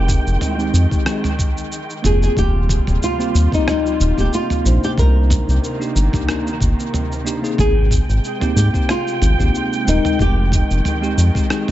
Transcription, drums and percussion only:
0.08 kick loud
0.08 shaker medium
0.27 shaker soft
0.41 mid tom medium
0.41 shaker soft
0.59 shaker soft
0.74 shaker medium
0.91 kick loud
0.91 shaker soft
1.06 cross-stick medium
1.06 shaker soft
1.24 mid tom medium
1.24 shaker soft
1.39 kick loud
1.39 shaker medium
1.57 shaker soft
1.72 shaker soft
1.90 shaker soft
2.04 mid tom medium
2.04 shaker medium
2.23 shaker soft
2.37 kick loud
2.37 shaker soft
2.69 kick loud
2.69 shaker medium
2.87 mid tom medium
2.87 shaker soft
3.03 shaker soft
3.20 shaker soft
3.35 shaker medium
3.52 kick medium
3.52 shaker soft
3.68 cross-stick medium
3.68 mid tom medium
3.68 shaker soft
3.86 shaker soft
4.01 shaker medium
4.18 kick medium
4.18 shaker soft
4.33 shaker soft
4.50 mid tom medium
4.50 shaker soft
4.66 shaker medium
4.83 shaker soft
4.98 kick loud
4.98 shaker soft
5.30 kick loud
5.30 mid tom medium
5.30 shaker medium
5.49 shaker soft
5.64 shaker soft
5.82 shaker soft
5.96 shaker medium
6.13 kick medium
6.13 mid tom medium
6.13 shaker soft
6.29 cross-stick medium
6.29 shaker soft
6.47 shaker soft
6.61 kick medium
6.61 shaker medium
6.80 shaker soft
6.94 mid tom medium
6.94 shaker soft
7.12 shaker soft
7.27 shaker medium
7.44 shaker soft
7.58 kick loud
7.58 mid tom medium
7.58 shaker soft
7.91 kick loud
7.91 shaker medium
8.10 shaker soft
8.24 shaker soft
8.41 mid tom medium
8.41 shaker soft
8.57 shaker medium
8.74 kick medium
8.74 shaker soft
8.89 cross-stick medium
8.89 shaker soft
9.07 shaker soft
9.22 mid tom medium
9.22 shaker medium
9.39 kick medium
9.39 shaker soft
9.55 shaker soft
9.73 shaker soft
9.88 shaker medium
10.05 mid tom medium
10.05 shaker soft
10.19 kick loud
10.19 shaker soft
10.52 kick medium
10.52 shaker medium
10.71 shaker soft
10.85 mid tom medium
10.85 shaker soft
11.03 shaker soft
11.18 shaker medium
11.35 kick medium
11.35 shaker soft
11.50 cross-stick medium
11.50 shaker soft
11.68 mid tom medium

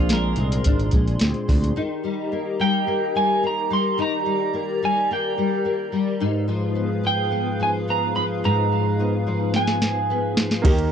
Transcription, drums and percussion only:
0.09 snare loud
0.09 closed hi-hat medium
0.36 closed hi-hat medium
0.52 closed hi-hat medium
0.64 kick medium
0.64 closed hi-hat medium
0.79 closed hi-hat soft
0.91 kick medium
0.91 closed hi-hat medium
1.07 closed hi-hat soft
1.19 snare loud
1.19 closed hi-hat medium
1.34 closed hi-hat soft
1.49 kick medium
1.49 snare soft
1.49 open hi-hat soft
1.64 closed hi-hat soft
9.54 snare medium
9.67 snare medium
9.82 snare medium
10.37 snare loud
10.51 snare medium
10.65 kick loud
10.65 ride medium
10.78 ride soft

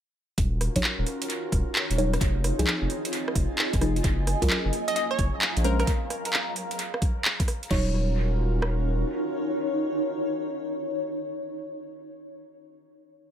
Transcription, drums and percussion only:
0.38 kick loud
0.38 closed hi-hat medium
0.61 cross-stick medium
0.61 open hi-hat loud
0.76 kick medium
0.76 closed hi-hat medium
0.84 clap loud
1.07 open hi-hat loud
1.22 closed hi-hat medium
1.30 closed hi-hat medium
1.52 kick medium
1.52 open hi-hat loud
1.75 clap loud
1.91 closed hi-hat soft
1.98 open hi-hat loud
2.13 cross-stick medium
2.13 closed hi-hat soft
2.21 kick loud
2.21 closed hi-hat medium
2.44 cross-stick medium
2.44 open hi-hat loud
2.59 closed hi-hat medium
2.67 clap loud
2.90 open hi-hat loud
3.05 closed hi-hat medium
3.13 closed hi-hat medium
3.28 cross-stick medium
3.35 kick loud
3.35 open hi-hat loud
3.58 clap loud
3.73 kick loud
3.73 closed hi-hat soft
3.81 cross-stick medium
3.81 open hi-hat loud
3.96 closed hi-hat soft
4.04 kick loud
4.04 closed hi-hat medium
4.27 cross-stick medium
4.27 open hi-hat loud
4.42 kick medium
4.42 closed hi-hat medium
4.50 clap loud
4.73 open hi-hat loud
4.88 closed hi-hat medium
4.96 closed hi-hat medium
5.19 kick loud
5.19 open hi-hat loud
5.42 clap loud
5.57 closed hi-hat soft
5.64 open hi-hat loud
5.80 cross-stick medium
5.80 closed hi-hat soft
5.87 kick loud
5.87 closed hi-hat medium
6.10 cross-stick medium
6.10 open hi-hat loud
6.25 closed hi-hat medium
6.33 clap loud
6.56 open hi-hat loud
6.71 closed hi-hat medium
6.79 closed hi-hat medium
6.94 cross-stick medium
7.02 kick loud
7.02 open hi-hat loud
7.25 clap loud
7.40 kick loud
7.40 closed hi-hat medium
7.48 cross-stick medium
7.48 open hi-hat loud
7.63 closed hi-hat soft
7.71 kick loud
7.71 crash medium
8.62 cross-stick medium

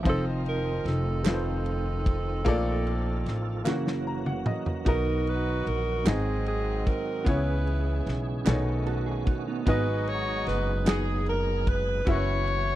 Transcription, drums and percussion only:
0.05 kick loud
0.05 ride medium
0.46 ride soft
0.86 snare soft
0.86 ride soft
1.25 snare loud
1.25 clap loud
1.25 ride medium
1.66 ride soft
2.06 kick loud
2.06 ride soft
2.46 kick loud
2.46 ride medium
2.87 ride soft
3.26 snare soft
3.26 ride soft
3.66 snare medium
3.66 clap medium
3.87 snare medium
4.26 mid tom medium
4.46 mid tom loud
4.66 floor tom loud
4.86 kick loud
4.86 ride medium
5.27 ride soft
5.67 ride soft
6.06 snare loud
6.06 clap loud
6.06 ride medium
6.46 ride soft
6.87 kick loud
6.87 ride soft
7.26 kick loud
7.26 ride medium
7.67 ride soft
8.07 snare soft
8.07 ride soft
8.46 snare loud
8.46 clap medium
8.46 ride medium
8.86 ride soft
9.27 kick loud
9.27 ride soft
9.67 kick loud
9.67 ride medium
10.07 ride soft
10.46 snare soft
10.46 ride soft
10.87 snare loud
10.87 clap loud
10.87 ride medium
11.26 ride soft
11.67 kick loud
11.67 ride medium
12.07 kick loud
12.07 ride medium
12.47 ride soft

